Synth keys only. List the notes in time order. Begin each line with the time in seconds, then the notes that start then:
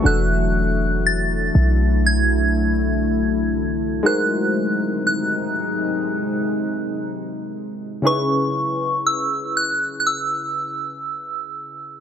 Already playing: C#6
0.03 E3 D4 F#4 A4
0.07 E5
4.03 G#3 D#4 F#4 A#4 C5
8.02 C#3 C#4 D#4 G#4
8.06 B4